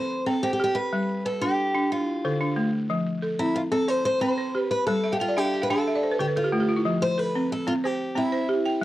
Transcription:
Already playing: steel-string acoustic guitar C5, balafon C5
0.26 balafon C4 G5, steel-string acoustic guitar A4
0.43 steel-string acoustic guitar G4, balafon C5
0.53 steel-string acoustic guitar G4
0.60 balafon G4
0.64 steel-string acoustic guitar G4
0.75 steel-string acoustic guitar B4
0.93 balafon G3
1.25 steel-string acoustic guitar A4, balafon B4
1.41 balafon D4, steel-string acoustic guitar G4
1.75 balafon D4
1.92 balafon D4, steel-string acoustic guitar F4
2.25 balafon D3 A4
2.41 balafon D4
2.56 balafon A3
2.90 balafon F3
3.22 balafon A4
3.39 balafon C4, steel-string acoustic guitar E4
3.56 steel-string acoustic guitar F4
3.72 balafon C4, steel-string acoustic guitar A4
3.88 balafon C5, steel-string acoustic guitar C5
4.05 steel-string acoustic guitar C5
4.21 balafon C4 G5, steel-string acoustic guitar C5
4.38 balafon C5
4.55 balafon G4
4.59 steel-string acoustic guitar B4
4.71 steel-string acoustic guitar B4
4.87 balafon G3, steel-string acoustic guitar A4
5.04 balafon E5
5.12 steel-string acoustic guitar G4, balafon F5
5.20 steel-string acoustic guitar F4, balafon G5
5.29 balafon D5
5.37 balafon D4 E5, steel-string acoustic guitar G4
5.44 balafon F5
5.54 balafon G5
5.62 steel-string acoustic guitar B4, balafon F5
5.70 balafon D4 G5, steel-string acoustic guitar A4
5.78 balafon F5
5.88 balafon E5
5.95 balafon D5
6.03 balafon C5
6.12 balafon B4
6.19 balafon D3 A4, steel-string acoustic guitar G4
6.28 balafon B4
6.36 steel-string acoustic guitar F4, balafon A4
6.44 balafon G4
6.52 balafon A3 F4
6.60 balafon G4
6.69 balafon F4
6.77 balafon E4
6.85 balafon F3
7.02 steel-string acoustic guitar C5
7.18 balafon A4, steel-string acoustic guitar B4
7.35 balafon C4
7.52 steel-string acoustic guitar A4
7.67 balafon C4, steel-string acoustic guitar F4
7.84 steel-string acoustic guitar G4, balafon C5
8.15 balafon C4 G5, steel-string acoustic guitar E4
8.32 balafon C5
8.49 balafon G4
8.66 balafon G5

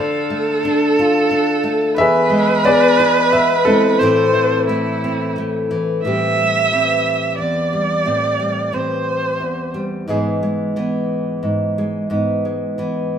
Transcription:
Already playing: nylon-string guitar D3, upright piano A4 D5 F5, viola A4
0.30 nylon-string guitar A3
0.65 nylon-string guitar D4
0.99 nylon-string guitar F4
1.31 nylon-string guitar D4
1.64 nylon-string guitar A3
1.96 nylon-string guitar E2, viola B4, upright piano E5
2.01 upright piano G#4 B4
2.30 nylon-string guitar G#3
2.64 nylon-string guitar B3, upright piano G#4 B4 D5
2.99 nylon-string guitar E4
3.33 nylon-string guitar B3, upright piano E5
3.65 nylon-string guitar G#3, upright piano C4 E4 A4
3.99 nylon-string guitar A2 E3 A3 C4, viola C5
4.03 nylon-string guitar E4
4.34 nylon-string guitar E3
4.67 nylon-string guitar A3, viola E4
5.04 nylon-string guitar C4
5.38 nylon-string guitar A3
5.71 nylon-string guitar E3
6.03 nylon-string guitar A2 E3 G3 C4 G4, viola E5
6.39 nylon-string guitar G3
6.72 nylon-string guitar E3 C4
7.38 nylon-string guitar E2, viola D5
7.73 nylon-string guitar G3
8.05 nylon-string guitar A2 C4
8.40 nylon-string guitar G3
8.72 nylon-string guitar E3 C4, viola C5
9.40 nylon-string guitar E2
9.74 nylon-string guitar G3
10.08 nylon-string guitar G#2 E3 G#3 B3 G#4
10.43 nylon-string guitar G#3
10.76 nylon-string guitar E3 B3
11.43 nylon-string guitar G#2
11.78 nylon-string guitar G#3
12.10 nylon-string guitar G#2 B3
12.45 nylon-string guitar G#3
12.78 nylon-string guitar E3 B3

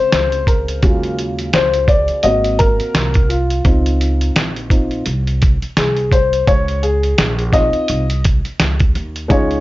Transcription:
Already playing: upright piano C#3 G#3 C4 C5
0.12 upright bass C#2, snare, closed hi-hat
0.32 closed hi-hat
0.47 upright piano A#4, kick, closed hi-hat
0.68 closed hi-hat
0.82 upright bass D#2, upright piano C#3 F#3 G#3 F4, kick, closed hi-hat
1.03 closed hi-hat
1.19 closed hi-hat
1.39 closed hi-hat
1.53 upright bass C#2, upright piano C5, snare, closed hi-hat
1.74 closed hi-hat
1.88 upright piano D5, kick, closed hi-hat
2.08 muted upright bass stroke, closed hi-hat
2.23 upright bass G#1, upright piano A#3 C4 F#4 D#5, closed hi-hat
2.44 closed hi-hat
2.59 upright piano A#4, kick, closed hi-hat
2.80 muted upright bass stroke, closed hi-hat
2.94 upright bass C2, snare, closed hi-hat
3.14 kick, closed hi-hat
3.29 upright piano F4, closed hi-hat
3.50 closed hi-hat
3.65 upright bass C#2, upright piano C4 D#4 F4, kick, closed hi-hat
3.86 closed hi-hat
4.01 closed hi-hat
4.21 closed hi-hat
4.36 upright bass A#1, snare, closed hi-hat
4.56 closed hi-hat
4.70 upright piano C4 D#4 F4, kick, closed hi-hat
4.91 closed hi-hat
5.06 upright bass C2, closed hi-hat
5.27 closed hi-hat
5.42 kick, closed hi-hat
5.62 muted upright bass stroke, closed hi-hat
5.77 upright bass C2, upright piano G#4, snare, closed hi-hat
5.97 closed hi-hat
6.12 upright piano C5, kick, closed hi-hat
6.33 closed hi-hat
6.47 upright bass C#2, upright piano C#5, kick, closed hi-hat
6.68 closed hi-hat
6.83 upright piano G#4, closed hi-hat
7.03 closed hi-hat
7.18 upright bass A#1, snare, closed hi-hat
7.39 closed hi-hat
7.53 upright piano C4 D#4 F4 D#5, kick, snare, closed hi-hat
7.73 muted upright bass stroke, closed hi-hat
7.88 upright bass C2, closed hi-hat
8.10 closed hi-hat
8.24 kick, closed hi-hat
8.45 muted upright bass stroke, closed hi-hat
8.60 upright bass C#2, snare, closed hi-hat
8.80 kick, closed hi-hat
8.95 upright bass D#2, closed hi-hat
9.16 closed hi-hat
9.28 upright bass C#2, upright piano G#3 C#4 D#4 F4 C#5, kick, closed hi-hat
9.51 closed hi-hat

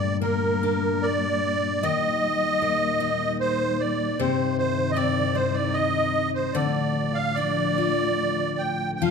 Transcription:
Already playing: steel-string acoustic guitar G2 D3 D4 A4, string section A#2 G3 A#3, accordion D5
0.21 steel-string acoustic guitar A#3, accordion A#4
0.63 steel-string acoustic guitar D4
1.03 accordion D5
1.82 string section D#2, steel-string acoustic guitar D#3, accordion D#5
2.62 steel-string acoustic guitar A#3
3.00 steel-string acoustic guitar D#4
3.40 accordion C5
3.80 accordion D5
4.19 string section C2 G2 D#3, steel-string acoustic guitar C3, accordion C5
4.58 accordion C5
4.91 accordion D5 D#5
4.96 steel-string acoustic guitar C4
5.35 steel-string acoustic guitar D#4, accordion C5
5.54 accordion D5
5.73 accordion D#5
6.35 accordion C5
6.53 string section D2 A2 F3, steel-string acoustic guitar D3, accordion D5
7.14 accordion F5
7.34 steel-string acoustic guitar D4, accordion D5
7.78 steel-string acoustic guitar F4
8.58 accordion G5
8.96 accordion G5
9.01 string section F2 C3 A3, steel-string acoustic guitar F3, accordion F5

